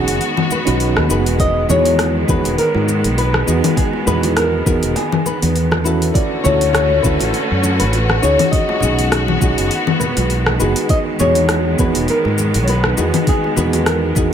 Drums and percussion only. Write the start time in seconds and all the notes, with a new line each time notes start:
0.08 open hi-hat, shaker
0.21 open hi-hat, shaker
0.37 high bongo, low conga
0.50 high conga, shaker
0.66 open hi-hat, high bongo, shaker
0.80 open hi-hat, shaker
0.97 cross-stick, high conga
1.10 high bongo, shaker
1.26 open hi-hat, shaker
1.39 kick, open hi-hat, high conga, shaker
1.69 high bongo, low conga, shaker
1.85 open hi-hat, high conga, shaker
1.99 cross-stick, open hi-hat, high bongo, shaker
2.28 kick, high conga, shaker
2.44 open hi-hat, high bongo, shaker
2.58 open hi-hat, shaker
2.74 high bongo
2.88 high conga, shaker
3.04 open hi-hat, shaker
3.18 open hi-hat, high bongo, shaker
3.34 cross-stick, high conga
3.47 high bongo, shaker
3.64 open hi-hat, low conga, shaker
3.77 kick, open hi-hat, high conga, shaker
3.93 high bongo
4.07 low conga, shaker
4.23 open hi-hat, high bongo, high conga, shaker
4.37 cross-stick, open hi-hat, shaker
4.66 kick, high bongo, high conga, shaker
4.83 open hi-hat, shaker
4.96 open hi-hat, high bongo, shaker
5.12 low conga
5.26 high conga, shaker
5.42 open hi-hat, high bongo, shaker
5.56 open hi-hat, shaker
5.71 cross-stick, high bongo, high conga
5.86 shaker
6.02 open hi-hat, shaker
6.15 kick, open hi-hat, high bongo, high conga, shaker
6.44 high bongo, low conga, shaker
6.61 open hi-hat, high conga, shaker
6.75 cross-stick, open hi-hat, shaker
6.90 high bongo
7.03 kick, high conga, shaker
7.20 open hi-hat, high bongo, shaker
7.34 open hi-hat, shaker
7.63 high bongo, high conga, shaker
7.80 open hi-hat, shaker
7.93 open hi-hat, high bongo, shaker
8.09 cross-stick, high conga
8.23 shaker
8.39 open hi-hat, high bongo, low conga, shaker
8.52 kick, open hi-hat, high conga, shaker
8.69 high bongo
8.80 low conga, shaker
8.98 open hi-hat, high conga, shaker
9.11 cross-stick, open hi-hat, high bongo, shaker
9.28 low conga
9.41 kick, high bongo, high conga, shaker
9.58 open hi-hat, shaker
9.71 open hi-hat, shaker
9.87 high bongo, low conga
10.00 high conga, low conga, shaker
10.17 open hi-hat, high bongo, shaker
10.30 open hi-hat, shaker
10.46 cross-stick, high conga
10.60 high bongo, shaker
10.76 open hi-hat, shaker
10.89 kick, open hi-hat, high conga, shaker
11.19 high bongo, low conga, shaker
11.35 open hi-hat, high conga, shaker
11.49 cross-stick, open hi-hat, high bongo, shaker
11.79 kick, high conga, shaker
11.94 open hi-hat, high bongo, shaker
12.08 open hi-hat, shaker
12.25 high bongo
12.38 high conga, shaker
12.54 open hi-hat, shaker
12.68 open hi-hat, high bongo, shaker
12.84 cross-stick, high conga
12.97 high bongo, shaker
13.14 open hi-hat, low conga, shaker
13.27 kick, open hi-hat, high conga, shaker
13.44 high bongo
13.56 low conga, shaker
13.73 open hi-hat, high bongo, high conga, shaker
13.86 cross-stick, open hi-hat, shaker
14.15 kick, high bongo, high conga, shaker